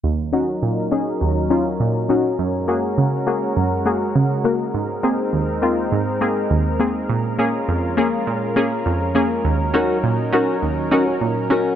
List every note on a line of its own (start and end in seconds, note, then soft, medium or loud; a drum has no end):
0.04 0.48 D#2 medium
0.04 2.37 F#3 medium
0.04 4.70 C#4 medium
0.04 2.37 D#4 medium
0.04 2.37 A#4 medium
0.33 0.45 C#4 medium
0.33 0.46 D#4 medium
0.33 0.46 F#4 loud
0.62 1.07 A#2 medium
0.92 1.04 C#4 medium
0.92 1.04 D#4 medium
0.92 1.05 G#4 medium
1.21 1.66 D#2 medium
1.50 1.63 C#4 medium
1.50 1.63 D#4 medium
1.50 1.63 F4 medium
1.80 2.25 A#2 medium
2.09 2.22 C#4 medium
2.09 2.22 D#4 medium
2.09 2.22 F#4 medium
2.39 2.83 F#2 medium
2.39 9.41 G#3 medium
2.39 4.72 F#4 medium
2.39 4.72 A#4 medium
2.68 2.81 A#3 medium
2.68 2.81 F#4 medium
2.68 2.81 G#4 medium
2.98 3.42 C#3 medium
3.27 3.39 A#3 medium
3.27 3.40 F#4 medium
3.27 3.40 G#4 medium
3.56 4.01 F#2 medium
3.86 3.98 A#3 medium
3.86 3.98 F#4 medium
3.86 3.99 G#4 medium
4.15 4.60 C#3 medium
4.44 4.57 A#3 medium
4.44 4.57 F#4 medium
4.44 4.58 A#4 medium
4.74 5.19 G#2 medium
4.74 7.07 C4 medium
4.74 7.07 D#4 medium
4.74 11.75 A#4 medium
5.03 5.16 A#3 medium
5.03 5.16 C4 medium
5.03 5.16 G#4 medium
5.33 5.77 D#2 medium
5.62 5.75 A#3 medium
5.62 5.75 C4 medium
5.62 5.75 F4 medium
5.92 6.36 G#2 medium
6.21 6.34 A#3 medium
6.21 6.34 C4 medium
6.21 6.34 G#4 loud
6.51 6.95 D#2 medium
6.80 6.92 A#3 medium
6.80 6.93 C4 medium
6.80 6.93 G#4 medium
7.09 7.54 A#2 medium
7.09 11.75 C#4 medium
7.09 9.42 F4 medium
7.38 7.51 A#3 medium
7.38 7.51 C#4 medium
7.38 7.52 G#4 medium
7.68 8.13 F2 medium
7.97 8.10 A#3 medium
7.97 8.10 C#4 medium
7.97 8.10 G#4 medium
8.27 8.72 A#2 medium
8.56 8.69 A#3 medium
8.56 8.69 C#4 medium
8.56 8.69 G#4 medium
8.86 9.30 F2 medium
9.15 9.28 A#3 medium
9.15 9.28 C#4 medium
9.15 9.28 G#4 medium
9.45 9.89 D#2 medium
9.45 11.75 F#3 medium
9.45 11.75 D#4 medium
9.74 9.86 C#4 medium
9.74 9.96 C#4 medium
9.74 9.87 D#4 medium
9.74 9.87 F#4 medium
9.74 9.96 F#4 medium
9.74 9.97 A#4 medium
10.04 10.48 A#2 medium
10.32 10.45 C#4 medium
10.32 10.55 C#4 medium
10.32 10.45 D#4 medium
10.32 10.46 F#4 medium
10.32 10.55 F#4 medium
10.32 10.55 A#4 medium
10.62 11.07 D#2 medium
10.91 11.04 C#4 medium
10.91 11.14 C#4 medium
10.91 11.04 D#4 medium
10.91 11.04 F#4 medium
10.91 11.07 F#4 medium
10.91 11.06 A#4 medium
11.07 muted nylon-string guitar stroke soft
11.21 11.66 A#2 medium
11.50 11.63 C#4 medium
11.50 11.72 C#4 medium
11.50 11.63 D#4 medium
11.50 11.63 F#4 medium
11.50 11.73 F#4 medium
11.50 11.73 A#4 medium